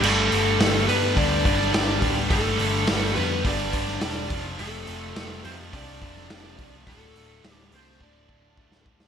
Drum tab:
CC |x---------------|----------------|----------------|----------------|
HH |--o-o-o-o-o-o-o-|o-o-o-o-o-o-o-o-|o-o-o-o-o-o-o-o-|o-o-o-o---------|
SD |----o------oo---|----o------oo---|----o------oo---|----o--------o-o|
BD |--------o-o---o-|o-------o-o---o-|--------o-o---o-|o-------o-o-o-o-|